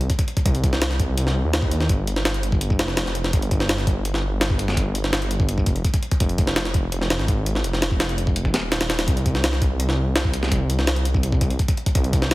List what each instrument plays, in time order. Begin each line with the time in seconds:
0.01 closed hi-hat
0.10 kick, closed hi-hat
0.19 kick, closed hi-hat
0.28 closed hi-hat
0.37 kick, closed hi-hat
0.45 detuned saw bass C2, kick, closed hi-hat
0.55 closed hi-hat
0.64 kick, closed hi-hat
0.73 snare
0.82 snare, closed hi-hat
0.91 snare
1.00 kick, closed hi-hat
1.17 detuned saw bass C2, closed hi-hat
1.27 snare
1.45 detuned saw bass D#2
1.53 snare, closed hi-hat
1.62 kick
1.71 closed hi-hat
1.80 snare
1.89 detuned saw bass G1, kick, closed hi-hat
2.07 closed hi-hat
2.16 snare
2.25 snare, closed hi-hat
2.34 closed hi-hat
2.43 closed hi-hat
2.52 kick
2.61 closed hi-hat
2.70 kick
2.79 detuned saw bass F1, snare, closed hi-hat
2.88 snare
2.97 snare, closed hi-hat
3.06 detuned saw bass F1, snare
3.15 closed hi-hat
3.24 snare
3.33 detuned saw bass G1, kick, closed hi-hat
3.42 closed hi-hat
3.51 kick, closed hi-hat
3.60 snare
3.69 snare, closed hi-hat
3.78 snare
3.87 kick, closed hi-hat
4.05 closed hi-hat
4.14 snare
4.41 snare, closed hi-hat
4.50 kick
4.59 closed hi-hat
4.68 snare
4.77 detuned saw bass G1, kick, closed hi-hat
4.95 closed hi-hat
5.04 snare
5.13 snare, closed hi-hat
5.22 closed hi-hat
5.31 closed hi-hat
5.40 kick
5.49 closed hi-hat
5.58 kick
5.66 detuned saw bass F1, kick, closed hi-hat
5.76 closed hi-hat
5.85 kick, closed hi-hat
5.94 kick, closed hi-hat
6.03 closed hi-hat
6.11 kick, closed hi-hat
6.20 detuned saw bass F1, kick, closed hi-hat
6.29 closed hi-hat
6.38 kick, closed hi-hat
6.47 snare
6.56 snare, closed hi-hat
6.65 snare
6.74 kick, closed hi-hat
6.92 detuned saw bass F1, closed hi-hat
7.01 snare
7.10 snare, closed hi-hat
7.19 detuned saw bass G#1, snare
7.28 kick, closed hi-hat
7.46 closed hi-hat
7.55 snare
7.64 detuned saw bass F1, closed hi-hat
7.73 snare
7.82 snare, closed hi-hat
7.91 kick
8.00 snare, closed hi-hat
8.09 closed hi-hat
8.18 closed hi-hat
8.27 kick
8.36 closed hi-hat
8.45 kick
8.54 detuned saw bass D#1, snare, closed hi-hat
8.72 snare, closed hi-hat
8.81 detuned saw bass D#1, snare, closed hi-hat
8.90 snare, closed hi-hat
8.99 snare, closed hi-hat
9.08 detuned saw bass C2, kick, closed hi-hat
9.17 closed hi-hat
9.26 kick, closed hi-hat
9.35 snare
9.44 snare, closed hi-hat
9.53 snare
9.62 kick, closed hi-hat
9.80 closed hi-hat
9.89 snare
10.16 snare, closed hi-hat
10.25 kick
10.34 closed hi-hat
10.43 snare
10.51 detuned saw bass C2, kick, closed hi-hat
10.70 closed hi-hat
10.79 snare
10.87 snare, closed hi-hat
10.96 closed hi-hat
11.05 closed hi-hat
11.14 kick
11.23 closed hi-hat
11.32 kick
11.41 detuned saw bass C2, kick, closed hi-hat
11.50 closed hi-hat
11.59 kick, closed hi-hat
11.68 kick, closed hi-hat
11.77 closed hi-hat
11.86 kick, closed hi-hat
11.95 detuned saw bass C2, kick, closed hi-hat
12.04 closed hi-hat
12.13 kick, closed hi-hat
12.22 snare